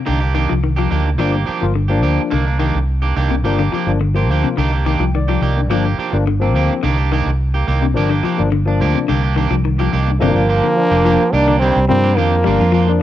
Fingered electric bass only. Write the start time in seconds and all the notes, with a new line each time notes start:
0.08 C2
0.52 C2
0.92 D2
1.20 G1
1.63 G1
2.04 D2
2.32 C2
2.75 C2
3.17 C2
3.46 G1
3.87 G1
4.30 D2
4.58 C2
4.99 C2
5.42 C2
5.70 G1
6.13 G1
6.55 D2
6.84 C2
7.26 C2
7.68 C2
7.98 G1
8.40 G1
8.80 D2
9.09 C2
9.51 C2
9.93 C2
10.21 G1
10.35 G1
10.91 F1
11.33 C2
11.76 C2
11.91 G2
12.19 F2
12.46 G1
12.60 F2